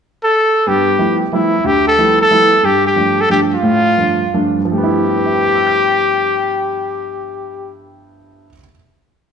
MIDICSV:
0, 0, Header, 1, 3, 480
1, 0, Start_track
1, 0, Tempo, 327332
1, 985, Time_signature, 3, 2, 24, 8
1, 4344, Tempo, 339367
1, 5784, Tempo, 367422
1, 6744, Tempo, 383387
1, 12510, End_track
2, 0, Start_track
2, 0, Title_t, "Trumpet"
2, 0, Program_c, 0, 56
2, 343, Note_on_c, 0, 69, 98
2, 994, Note_on_c, 0, 67, 93
2, 1016, Note_off_c, 0, 69, 0
2, 1779, Note_off_c, 0, 67, 0
2, 1962, Note_on_c, 0, 64, 75
2, 2441, Note_on_c, 0, 67, 86
2, 2463, Note_off_c, 0, 64, 0
2, 2741, Note_off_c, 0, 67, 0
2, 2750, Note_on_c, 0, 69, 91
2, 3188, Note_off_c, 0, 69, 0
2, 3250, Note_on_c, 0, 69, 99
2, 3887, Note_on_c, 0, 67, 90
2, 3909, Note_off_c, 0, 69, 0
2, 4183, Note_off_c, 0, 67, 0
2, 4207, Note_on_c, 0, 67, 81
2, 4693, Note_on_c, 0, 69, 88
2, 4714, Note_off_c, 0, 67, 0
2, 4834, Note_off_c, 0, 69, 0
2, 4842, Note_on_c, 0, 67, 78
2, 4973, Note_off_c, 0, 67, 0
2, 5164, Note_on_c, 0, 65, 84
2, 6534, Note_off_c, 0, 65, 0
2, 6761, Note_on_c, 0, 67, 91
2, 10582, Note_off_c, 0, 67, 0
2, 12510, End_track
3, 0, Start_track
3, 0, Title_t, "Grand piano"
3, 0, Program_c, 1, 0
3, 977, Note_on_c, 1, 59, 58
3, 986, Note_on_c, 1, 43, 59
3, 1396, Note_off_c, 1, 59, 0
3, 1401, Note_off_c, 1, 43, 0
3, 1447, Note_on_c, 1, 53, 45
3, 1448, Note_on_c, 1, 55, 42
3, 1455, Note_on_c, 1, 59, 44
3, 1455, Note_on_c, 1, 64, 52
3, 1456, Note_on_c, 1, 57, 41
3, 1782, Note_off_c, 1, 53, 0
3, 1783, Note_off_c, 1, 55, 0
3, 1786, Note_off_c, 1, 59, 0
3, 1786, Note_off_c, 1, 64, 0
3, 1787, Note_off_c, 1, 57, 0
3, 1942, Note_on_c, 1, 53, 48
3, 1944, Note_on_c, 1, 59, 45
3, 1945, Note_on_c, 1, 55, 46
3, 1951, Note_on_c, 1, 57, 46
3, 1954, Note_on_c, 1, 64, 57
3, 2269, Note_off_c, 1, 53, 0
3, 2270, Note_off_c, 1, 59, 0
3, 2271, Note_off_c, 1, 55, 0
3, 2274, Note_off_c, 1, 57, 0
3, 2276, Note_off_c, 1, 64, 0
3, 2407, Note_on_c, 1, 38, 61
3, 2413, Note_on_c, 1, 50, 63
3, 2830, Note_off_c, 1, 38, 0
3, 2833, Note_off_c, 1, 50, 0
3, 2907, Note_on_c, 1, 53, 47
3, 2907, Note_on_c, 1, 55, 43
3, 2913, Note_on_c, 1, 57, 45
3, 2915, Note_on_c, 1, 59, 44
3, 2916, Note_on_c, 1, 64, 50
3, 3231, Note_off_c, 1, 53, 0
3, 3231, Note_off_c, 1, 55, 0
3, 3234, Note_off_c, 1, 57, 0
3, 3235, Note_off_c, 1, 59, 0
3, 3236, Note_off_c, 1, 64, 0
3, 3380, Note_on_c, 1, 55, 45
3, 3381, Note_on_c, 1, 53, 48
3, 3384, Note_on_c, 1, 57, 46
3, 3393, Note_on_c, 1, 64, 58
3, 3397, Note_on_c, 1, 59, 48
3, 3707, Note_off_c, 1, 53, 0
3, 3707, Note_off_c, 1, 55, 0
3, 3709, Note_off_c, 1, 57, 0
3, 3713, Note_off_c, 1, 64, 0
3, 3715, Note_off_c, 1, 59, 0
3, 3857, Note_on_c, 1, 43, 59
3, 4275, Note_off_c, 1, 43, 0
3, 4337, Note_on_c, 1, 43, 46
3, 4341, Note_on_c, 1, 53, 43
3, 4349, Note_on_c, 1, 62, 53
3, 4350, Note_on_c, 1, 57, 41
3, 4658, Note_off_c, 1, 43, 0
3, 4660, Note_off_c, 1, 53, 0
3, 4664, Note_off_c, 1, 57, 0
3, 4664, Note_off_c, 1, 62, 0
3, 4814, Note_on_c, 1, 43, 54
3, 4814, Note_on_c, 1, 53, 48
3, 4815, Note_on_c, 1, 57, 47
3, 4824, Note_on_c, 1, 62, 57
3, 5137, Note_off_c, 1, 43, 0
3, 5137, Note_off_c, 1, 53, 0
3, 5137, Note_off_c, 1, 57, 0
3, 5142, Note_off_c, 1, 62, 0
3, 5282, Note_on_c, 1, 57, 63
3, 5285, Note_on_c, 1, 45, 65
3, 5711, Note_off_c, 1, 57, 0
3, 5712, Note_off_c, 1, 45, 0
3, 5777, Note_on_c, 1, 53, 41
3, 5781, Note_on_c, 1, 43, 48
3, 5786, Note_on_c, 1, 57, 44
3, 5792, Note_on_c, 1, 62, 51
3, 6098, Note_off_c, 1, 53, 0
3, 6099, Note_off_c, 1, 43, 0
3, 6102, Note_off_c, 1, 57, 0
3, 6105, Note_off_c, 1, 62, 0
3, 6253, Note_on_c, 1, 43, 52
3, 6255, Note_on_c, 1, 53, 46
3, 6257, Note_on_c, 1, 57, 47
3, 6259, Note_on_c, 1, 62, 56
3, 6555, Note_off_c, 1, 43, 0
3, 6575, Note_on_c, 1, 43, 57
3, 6584, Note_off_c, 1, 53, 0
3, 6585, Note_off_c, 1, 57, 0
3, 6586, Note_off_c, 1, 62, 0
3, 6660, Note_on_c, 1, 53, 56
3, 6745, Note_on_c, 1, 57, 54
3, 6822, Note_on_c, 1, 59, 54
3, 6895, Note_on_c, 1, 64, 69
3, 7223, Note_on_c, 1, 67, 39
3, 7315, Note_on_c, 1, 71, 39
3, 7427, Note_on_c, 1, 76, 35
3, 7531, Note_on_c, 1, 79, 35
3, 7793, Note_on_c, 1, 88, 32
3, 7936, Note_on_c, 1, 91, 30
3, 11419, Note_off_c, 1, 43, 0
3, 11450, Note_off_c, 1, 67, 0
3, 11460, Note_off_c, 1, 53, 0
3, 11496, Note_off_c, 1, 71, 0
3, 11501, Note_off_c, 1, 57, 0
3, 11539, Note_off_c, 1, 59, 0
3, 11552, Note_off_c, 1, 76, 0
3, 11576, Note_off_c, 1, 64, 0
3, 11604, Note_off_c, 1, 79, 0
3, 11735, Note_off_c, 1, 88, 0
3, 11806, Note_off_c, 1, 91, 0
3, 12510, End_track
0, 0, End_of_file